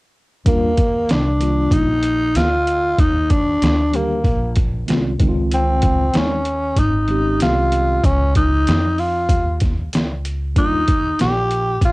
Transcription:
0.45 D#2 D#3 G3 A#3 D4 F4, kick, closed hi-hat
0.77 kick, closed hi-hat
1.08 C2 D4, snare, closed hi-hat
1.39 D#3 G3 A#3 D4 F4, closed hi-hat
1.71 A#1 D#4, kick, closed hi-hat
2.03 closed hi-hat
2.35 D2 F4, snare, closed hi-hat
2.67 closed hi-hat
2.99 D#2 D#4, kick, closed hi-hat
3.30 D4, kick, closed hi-hat
3.62 D2, snare, closed hi-hat
3.92 D#3 G3 A#3 D4 G4, closed hi-hat
3.96 A#3
4.24 A#1, kick, closed hi-hat
4.56 kick, closed hi-hat
4.86 C2 D#3 G#3 C4 C#4 F4, snare, closed hi-hat
5.19 C#2 C#3 D#3 G#3 C4 D#4, kick, closed hi-hat
5.28 F4
5.51 C4, closed hi-hat
5.82 kick, closed hi-hat
6.13 D#2 D#3 G#3 C4 C#4 D#4, snare, closed hi-hat
6.17 C#4
6.45 closed hi-hat
6.76 G#1 D#4, kick, closed hi-hat
7.08 D#3 G#3 C4 C#4 G4, closed hi-hat
7.40 C2 F4, snare, closed hi-hat
7.72 closed hi-hat
8.04 C#2 C#4, kick, closed hi-hat
8.35 D#4, kick, closed hi-hat
8.67 F2, snare, closed hi-hat
8.98 F4, open hi-hat
9.29 D#2, kick, closed hi-hat
9.60 kick, snare, closed hi-hat
9.93 C#2, snare, closed hi-hat
10.25 closed hi-hat
10.55 D#2 D#3 G3 A#3 D4 D#4 F4, kick, closed hi-hat
10.88 kick, closed hi-hat
11.19 A#1 G4, snare, closed hi-hat
11.51 closed hi-hat
11.81 A#1 F4, kick, closed hi-hat

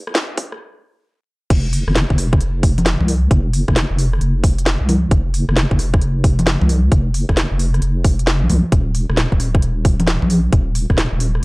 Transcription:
0.07 F1, cross-stick
0.15 snare, closed hi-hat
0.30 F1
0.38 kick, open hi-hat
0.52 cross-stick
1.50 F1, kick, closed hi-hat, crash
1.73 open hi-hat
1.88 F1, cross-stick
1.96 snare, closed hi-hat
2.10 F1, kick
2.18 cross-stick, open hi-hat
2.33 kick, cross-stick
2.40 F1, closed hi-hat
2.63 kick, open hi-hat
2.78 closed hi-hat, high conga
2.86 snare, closed hi-hat
3.00 C2, high conga
3.08 open hi-hat
3.31 F1, kick, closed hi-hat
3.53 open hi-hat
3.68 F1, kick, cross-stick
3.76 snare, closed hi-hat
3.91 F1
3.99 open hi-hat
4.13 cross-stick
4.21 F1, closed hi-hat
4.44 kick, open hi-hat
4.58 closed hi-hat
4.66 snare, closed hi-hat
4.81 C2
4.89 open hi-hat, high conga
5.11 F1, kick, closed hi-hat
5.34 open hi-hat
5.49 F1, cross-stick
5.57 snare, closed hi-hat
5.71 F1, kick
5.79 cross-stick, open hi-hat
5.94 kick, cross-stick
6.01 F1, closed hi-hat
6.24 kick, open hi-hat
6.39 closed hi-hat, high conga
6.47 snare, closed hi-hat
6.61 C2, high conga
6.69 open hi-hat
6.92 F1, kick, closed hi-hat
7.14 open hi-hat
7.29 F1, kick, cross-stick
7.37 snare, closed hi-hat
7.52 F1
7.59 open hi-hat
7.74 cross-stick, closed hi-hat
7.82 F1, closed hi-hat
8.04 kick, open hi-hat
8.19 closed hi-hat
8.27 snare, closed hi-hat
8.42 C2
8.50 C2, open hi-hat, high conga
8.72 D#1, kick, closed hi-hat
8.95 open hi-hat
9.10 D#1, cross-stick
9.17 snare, closed hi-hat
9.32 D#1, kick
9.40 cross-stick, open hi-hat
9.55 kick, cross-stick
9.62 D#1, closed hi-hat
9.85 kick, open hi-hat
10.00 closed hi-hat, high conga
10.07 snare, closed hi-hat
10.22 A#1, high conga
10.30 open hi-hat
10.53 D#1, kick, closed hi-hat
10.75 open hi-hat
10.90 D#1, kick, cross-stick
10.98 snare, closed hi-hat
11.12 D#1
11.20 open hi-hat
11.35 cross-stick

